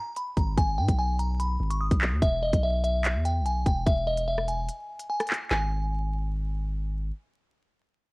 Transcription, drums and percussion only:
0.17 closed hi-hat medium
0.37 kick loud
0.37 closed hi-hat medium
0.58 kick loud
0.58 closed hi-hat medium
0.89 kick medium
0.89 closed hi-hat medium
1.19 closed hi-hat medium
1.40 closed hi-hat medium
1.71 closed hi-hat medium
1.91 kick loud
1.91 closed hi-hat medium
2.02 clap loud
2.22 kick loud
2.22 closed hi-hat medium
2.53 kick loud
2.53 closed hi-hat medium
2.84 closed hi-hat medium
3.04 clap loud
3.04 closed hi-hat medium
3.25 closed hi-hat medium
3.45 closed hi-hat medium
3.66 kick loud
3.66 closed hi-hat medium
3.86 kick loud
3.86 closed hi-hat medium
4.17 closed hi-hat medium
4.38 cross-stick medium
4.48 closed hi-hat medium
4.69 closed hi-hat medium
4.99 closed hi-hat medium
5.20 cross-stick loud
5.20 closed hi-hat soft
5.27 clap loud
5.27 closed hi-hat medium
5.34 closed hi-hat medium
5.51 snare loud
5.51 clap medium

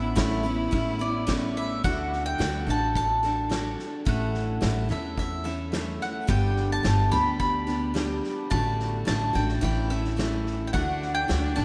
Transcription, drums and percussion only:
0.17 kick medium
0.17 snare medium
0.73 kick medium
1.28 kick medium
1.28 snare medium
1.84 kick medium
1.84 snare soft
2.13 snare soft
2.40 snare medium
2.68 snare soft
2.95 kick medium
2.95 snare soft
3.23 snare soft
3.51 snare medium
3.79 snare soft
4.07 kick medium
4.07 snare soft
4.35 snare soft
4.62 snare medium
4.89 snare soft
5.18 kick medium
5.18 snare soft
5.46 snare soft
5.73 snare medium
6.01 snare soft
6.29 kick medium
6.29 snare soft
6.57 snare soft
6.84 snare medium
7.12 snare soft
7.40 kick medium
7.40 snare soft
7.68 snare soft
7.96 snare medium
8.24 snare soft
8.51 kick medium
8.51 snare soft
8.80 snare soft
9.07 snare medium
9.35 snare soft
9.49 snare soft
9.63 kick medium
9.63 snare soft
9.91 snare soft
10.05 snare soft
10.19 snare medium
10.47 snare soft
10.74 kick medium
10.74 snare soft
11.03 snare soft
11.29 snare medium
11.57 snare soft

